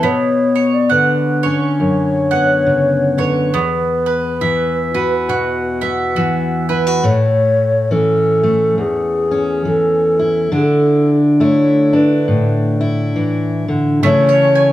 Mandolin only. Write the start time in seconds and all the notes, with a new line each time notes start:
Already playing: E4 A4 E5
0.03 B3
0.56 C#5
0.90 F#5
1.43 C#5
2.31 F#5
3.18 C#5
3.54 B3
4.06 B4
4.41 E5
4.94 B4
5.29 F#4
5.81 E5
6.16 F#4
6.69 B4
14.03 A3
14.29 C#5
14.55 G#5